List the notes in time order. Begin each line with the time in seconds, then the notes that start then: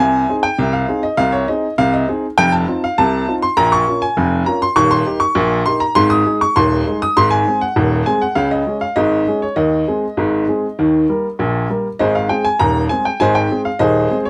0.00 C2 C3 G#5
0.29 C4 D#4 G#4
0.43 G5
0.58 C2 C3
0.73 F5
0.88 C4 D#4 G#4
1.03 D#5
1.17 C2 C3 F5
1.32 C#5
1.48 C4 D#4 G#4 D#5
1.78 C2 C3 F5
1.94 D#5
2.08 C4 D#4 G#4
2.38 F1 F2 G5
2.52 A5
2.68 C4 D#4 F4
2.84 F5
2.98 C2 C3 A5
3.28 C4 D#4 F4
3.42 C6
3.57 A#1 A#2 A#5
3.72 C#6
3.87 A#3 C#4 F4
4.02 G#5
4.17 F1 F2
4.46 A#3 C#4 F4 A#5
4.62 C6
4.76 D#1 D#2 C#6
4.91 C6
5.06 A#3 D#4 G4
5.20 C#6
5.35 A#1 A#2
5.66 A#3 D#4 G4 C6
5.80 A#5
5.95 G#1 G#2 C6
6.10 D#6
6.26 G#3 D#4 G#4
6.41 C#6
6.56 D#1 D#2 C6
6.87 G#3 D#4 G#4
7.02 D#6
7.17 G#1 G#2 C6
7.31 G#5
7.47 G#3 C4 G#4
7.61 F#5
7.76 D#1 D#2
8.06 G#3 C4 G#4 G#5
8.22 F#5
8.35 C#2 C#3 F5
8.51 D#5
8.66 G#3 C#4 G#4
8.81 F5
8.96 G#1 G#2 D#5
9.28 G#3 C#4 G#4
9.42 C#5
9.56 D#2 D#3 D#5
9.88 G#3 C4 G#4
10.17 G#1 G#2
10.48 G#3 C4 G#4
10.79 D#2 D#3
11.09 G3 A#3 A#4
11.39 A#1 A#2
11.70 G3 A#3 A#4
11.99 G#1 G#2 G#4 C5 D#5
12.15 F5
12.29 G#3 C4 G#4 G5
12.45 G#5
12.60 D#1 D#2 A#5
12.89 G#3 C4 G#4 G#5
13.05 G5
13.20 G#1 G#2 C5 D#5 G#5
13.35 G5
13.51 G#3 C4 G#4
13.65 F5
13.79 D#1 D#2 G#4 C5 D#5
14.10 G#3 C4 G#4
14.25 C#5